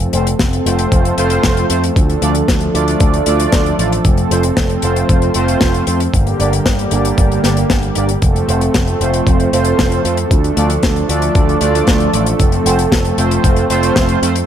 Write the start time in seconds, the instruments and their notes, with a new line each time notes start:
Already playing: analog synth pad F3 A3 C4 A4
0.00 closed hi-hat
0.13 picked electric bass F1, analog polysynth A3 C4 F4 C5, closed hi-hat
0.27 closed hi-hat
0.39 picked electric bass F1, kick, snare, closed hi-hat
0.53 closed hi-hat
0.66 picked electric bass F1, analog polysynth A3 C4 F4 C5, closed hi-hat
0.79 closed hi-hat
0.92 picked electric bass F1, kick, closed hi-hat
1.05 closed hi-hat
1.18 picked electric bass F1, analog polysynth A3 C4 F4 C5, closed hi-hat
1.30 closed hi-hat
1.44 picked electric bass F1, kick, snare, closed hi-hat
1.57 closed hi-hat
1.70 picked electric bass F2, analog polysynth A3 C4 F4 C5, closed hi-hat
1.84 closed hi-hat
1.96 picked electric bass D2, analog synth pad D4 A4, kick, closed hi-hat
2.10 closed hi-hat
2.22 picked electric bass D2, analog polysynth A3 D4 F4 D5, closed hi-hat
2.35 closed hi-hat
2.48 picked electric bass D2, kick, snare, closed hi-hat
2.60 closed hi-hat
2.74 picked electric bass D2, analog polysynth A3 D4 F4 D5, closed hi-hat
2.88 closed hi-hat
3.00 picked electric bass D2, kick, closed hi-hat
3.14 closed hi-hat
3.26 picked electric bass D2, analog polysynth A3 D4 F4 D5, closed hi-hat
3.40 closed hi-hat
3.52 picked electric bass D2, kick, snare, closed hi-hat
3.66 closed hi-hat
3.79 picked electric bass A1, analog polysynth A3 D4 F4 D5, closed hi-hat
3.92 closed hi-hat
4.05 picked electric bass F1, analog synth pad C4, kick, closed hi-hat
4.17 closed hi-hat
4.31 picked electric bass F1, analog polysynth A3 C4 F4 C5, closed hi-hat
4.43 closed hi-hat
4.57 picked electric bass F1, kick, snare, closed hi-hat
4.70 closed hi-hat
4.82 picked electric bass F1, analog polysynth A3 C4 F4 C5, closed hi-hat
4.96 closed hi-hat
5.09 picked electric bass F1, kick, closed hi-hat
5.22 closed hi-hat
5.34 picked electric bass F1, analog polysynth A3 C4 F4 C5, closed hi-hat
5.48 closed hi-hat
5.61 picked electric bass F1, kick, snare, closed hi-hat
5.74 closed hi-hat
5.87 picked electric bass F2, analog polysynth A3 C4 F4 C5, closed hi-hat
6.00 closed hi-hat
6.14 picked electric bass G1, analog synth pad D3 G3 A#3 G4, kick, closed hi-hat
6.27 closed hi-hat
6.40 picked electric bass G1, analog polysynth A#3 D4 G4 D5, closed hi-hat
6.53 closed hi-hat
6.66 picked electric bass G1, kick, snare, closed hi-hat
6.79 closed hi-hat
6.91 picked electric bass G1, analog polysynth A#3 D4 G4 D5, closed hi-hat
7.05 closed hi-hat
7.18 picked electric bass G1, kick, closed hi-hat
7.32 closed hi-hat
7.44 picked electric bass G1, analog polysynth A#3 D4 G4 D5, snare, closed hi-hat
7.57 closed hi-hat
7.70 picked electric bass G1, kick, snare, closed hi-hat
7.83 closed hi-hat
7.95 picked electric bass G1, analog polysynth A#3 D4 G4 D5, closed hi-hat
8.09 closed hi-hat
8.22 picked electric bass F1, analog synth pad F3 A3 C4 A4, kick, closed hi-hat
8.36 closed hi-hat
8.48 picked electric bass F1, analog polysynth A3 C4 F4 C5, closed hi-hat
8.61 closed hi-hat
8.74 picked electric bass F1, kick, snare, closed hi-hat
8.87 closed hi-hat
9.00 picked electric bass F1, analog polysynth A3 C4 F4 C5, closed hi-hat
9.14 closed hi-hat
9.27 picked electric bass F1, kick, closed hi-hat
9.40 closed hi-hat
9.53 picked electric bass F1, analog polysynth A3 C4 F4 C5, closed hi-hat
9.64 closed hi-hat
9.79 picked electric bass F1, kick, snare, closed hi-hat
9.92 closed hi-hat
10.05 picked electric bass F2, analog polysynth A3 C4 F4 C5, closed hi-hat
10.17 closed hi-hat
10.31 picked electric bass D2, analog synth pad A3 D4, kick, closed hi-hat
10.44 closed hi-hat
10.57 picked electric bass D2, analog polysynth A3 D4 F4 D5, closed hi-hat
10.70 closed hi-hat
10.83 picked electric bass D2, kick, snare, closed hi-hat
10.96 closed hi-hat
11.09 picked electric bass D2, analog polysynth A3 D4 F4 D5, closed hi-hat
11.22 closed hi-hat
11.35 picked electric bass D2, kick, closed hi-hat
11.49 closed hi-hat
11.61 picked electric bass D2, analog polysynth A3 D4 F4 D5, closed hi-hat
11.75 closed hi-hat
11.87 picked electric bass D2, kick, snare, closed hi-hat
12.00 closed hi-hat
12.13 picked electric bass A1, analog polysynth A3 D4 F4 D5, closed hi-hat
12.26 closed hi-hat
12.39 picked electric bass F1, analog synth pad C4, kick, closed hi-hat
12.52 closed hi-hat
12.66 picked electric bass F1, analog polysynth A3 C4 F4 C5, closed hi-hat
12.79 closed hi-hat
12.92 picked electric bass F1, kick, snare, closed hi-hat
13.05 closed hi-hat
13.18 picked electric bass F1, analog polysynth A3 C4 F4 C5, closed hi-hat
13.31 closed hi-hat
13.44 picked electric bass F1, kick, closed hi-hat
13.56 closed hi-hat
13.70 picked electric bass F1, analog polysynth A3 C4 F4 C5, closed hi-hat
13.83 closed hi-hat
13.96 picked electric bass F1, kick, snare, closed hi-hat
14.09 closed hi-hat
14.22 picked electric bass F2, analog polysynth A3 C4 F4 C5, closed hi-hat
14.36 closed hi-hat